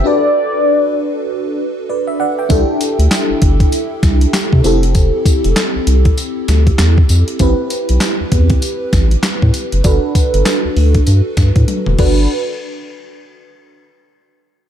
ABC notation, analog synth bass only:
X:1
M:4/4
L:1/16
Q:"Swing 16ths" 1/4=98
K:G
V:1 name="Analog synth bass" clef=bass
z16 | C,, z2 D,, z G,,, G,,,2 z2 C,,2 z C, =F,,,2- | =F,,,2 z F,,, z C,, C,,2 z2 D,,2 E,,2 =F,, z | A,,, z2 B,,, z E,, E,,2 z2 A,,,2 z A,, z F,,, |
G,,, z2 G,,, z D,, D,,2 G,, z G,, A,, z E,,, G,,,2 | z16 |]